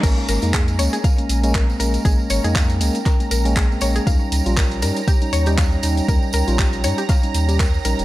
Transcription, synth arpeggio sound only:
X:1
M:4/4
L:1/16
Q:"Swing 16ths" 1/4=119
K:Bbdor
V:1 name="Synth arpeggio sound"
B z B z A z d A f z3 B z B z | A z d A f z3 B z B z A z d A | f z3 B z B z G z d G f z3 | B z B z G z d G f z3 B z B z |]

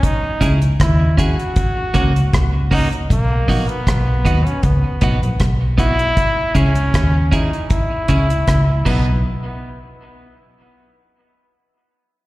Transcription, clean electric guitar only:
X:1
M:4/4
L:1/8
Q:1/4=78
K:B
V:1 name="Clean electric guitar"
z [CEG] z [CEG] z [A,CF] z [A,CF] | z [B,DF] z [B,DF] z [B,DF] z [B,DF] | z [CEG] z [CEG] z [CEG] z [F,B,D] | z8 |]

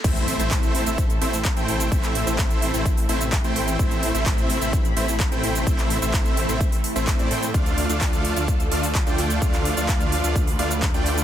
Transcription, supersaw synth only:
X:1
M:4/4
L:1/16
Q:1/4=128
K:Am
V:1 name="Supersaw synth"
[A,CEce]3 [A,CEce]4 [A,CEce] z2 [A,CEce] z2 [A,CEcg]3 | [A,CEce]3 [A,CEce]4 [A,CEce] z2 [A,CEce] z2 [A,CEcg]3 | [A,CEce]3 [A,CEce]4 [A,CEce] z2 [A,CEce] z2 [A,CEcg]3 | [A,CEce]3 [A,CEce]4 [A,CEce] z3 [A,CEce]2 [A,CEcd] [A,CEcg] z |
[A,DFdf]3 [A,DFdf]4 [A,DFdf] z2 [A,DFdf] z2 [A,DFdg]3 | [A,DFdf]3 [A,DFdf]4 [A,DFdf] z2 [A,DFdf] z2 [A,DFdg]3 |]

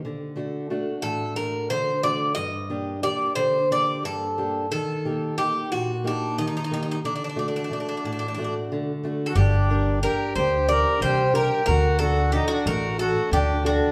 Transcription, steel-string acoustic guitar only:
X:1
M:7/8
L:1/8
Q:1/4=90
K:none
V:1 name="Steel-string acoustic guitar"
D, [A,D^F] [A,DF] A,, [A,DF] D, [A,DF] | G,, [_B,DG] [B,DG] D, [B,DG] G,, [B,DG] | _E, [_B,_EG] [B,EG] _B,, [B,EG] E, [B,EG] | D, [A,D^F] [A,DF] A,, [A,DF] D, [A,DF] |
G, [DG_B] [DGB] D, [DGB] G, [DGB] | D, [D^FA] [DFA] A, [DFA] D, [DFA] |]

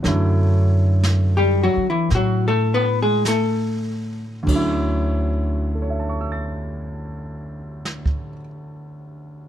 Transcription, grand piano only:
X:1
M:4/4
L:1/8
Q:"Swing" 1/4=48
K:D
V:1 name="Grand piano"
z8 | z2 [Aceac'e'a']6 |]
V:2 name="Grand piano" clef=bass
[D,F,A,CE]8 | [D,,D,F,CE]8 |]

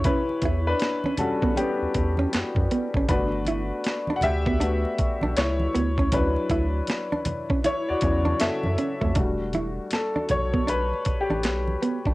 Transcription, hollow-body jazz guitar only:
X:1
M:4/4
L:1/16
Q:"Swing 16ths" 1/4=79
K:Edor
V:1 name="Hollow-body jazz guitar"
C z E z2 C z B, C z2 C z2 B, C | D z E z2 D z B, D z2 D z2 B, C | C z E z2 D z C E z2 D z2 C A, | D z E z2 D z B, D z2 D z2 B, D |]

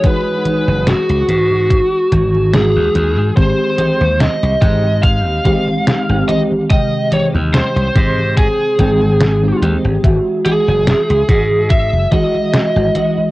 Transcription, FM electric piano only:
X:1
M:4/4
L:1/16
Q:"Swing 16ths" 1/4=72
K:Ab
V:1 name="FM electric piano" clef=bass
[=E,^G,^D^F]12 [E,G,DF]4 | [E,A,CG]8- [E,A,CG]2 [E,A,CG]3 [E,A,CG]3 | [C,E,A,g]8- [C,E,A,g]2 [E,A,Cg]3 [E,A,CG]3 | [=E,^G,^F=e]8- [E,G,Fe]2 [E,G,F^d]3 [E,G,Fd]3 |]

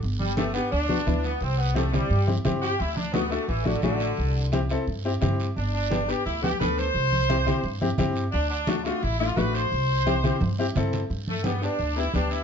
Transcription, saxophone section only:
X:1
M:4/4
L:1/8
Q:1/4=173
K:G
V:1 name="Saxophone section"
z G, A, B, D3 B, | C B, A, G,2 z2 G | E D B, A, E, D, D,2- | D,2 z6 |
D D2 G E G B c- | c4- c z3 | D D2 =F E F B c- | c4- c z3 |
z A, B, D2 E D E |]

